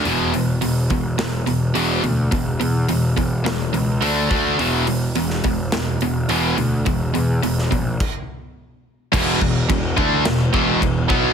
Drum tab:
CC |----------------|----------------|----------------|--------x-------|
HH |o-o-o-o-o-o-o-o-|o-o-o-o-o-o-o-o-|o-o-o-o-o-o-o-o-|o-o-o-o---------|
SD |--------o-------|--------o-------|-----o--o-------|-----o----------|
BD |------o---------|o-----o-------o-|------o---------|o-----o-o-------|

CC |x---x---x---x---|
HH |----------------|
SD |--------o-------|
BD |o-o-o-o---o-o-o-|